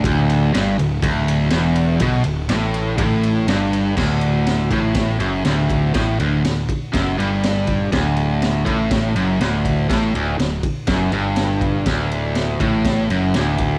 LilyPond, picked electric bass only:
\new Staff \with { instrumentName = "Picked electric bass" } { \clef bass \time 4/4 \key d \major \tempo 4 = 122 d,,4 g,,8 d,,8 d,,4 e,,4 | b,,8 d,,8 a,,4 a,,4 g,,4 | d,,4. a,,4 fis,,8 d,,4 | a,,8 d,,8 d,,8 r8 fis,,8 g,,4. |
d,,4. a,,4 fis,,8 d,,4 | a,,8 d,,8 d,,8 r8 fis,,8 g,,4. | d,,4. a,,4 fis,,8 d,,4 | }